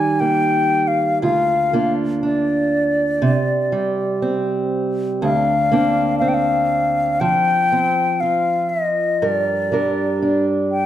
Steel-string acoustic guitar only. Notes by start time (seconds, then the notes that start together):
Already playing: D#3 G3
0.21 A#3
1.22 D2 F4
1.73 A#3 D4 F4
2.23 D4
3.22 C3
3.72 G3
4.22 C4
5.22 D2 D4
5.72 A#3 C4 D4
6.21 C4
7.21 F3
7.72 C4
8.23 F4
9.22 G2 A#4
9.72 G3 D4 A#4
10.22 D4